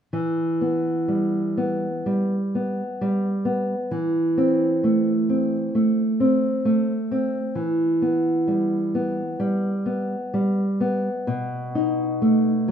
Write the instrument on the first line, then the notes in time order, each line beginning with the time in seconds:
nylon-string guitar
0.13 E3
0.61 B3
1.08 G3
1.57 B3
2.06 G3
2.55 B3
3.01 G3
3.45 B3
3.91 E3
4.37 C4
4.84 A3
5.29 C4
5.75 A3
6.20 C4
6.65 A3
7.11 C4
7.55 E3
8.02 B3
8.47 G3
8.95 B3
9.40 G3
9.86 B3
10.34 G3
10.80 B3
11.27 B2
11.75 D#4
12.22 A3
12.68 F#3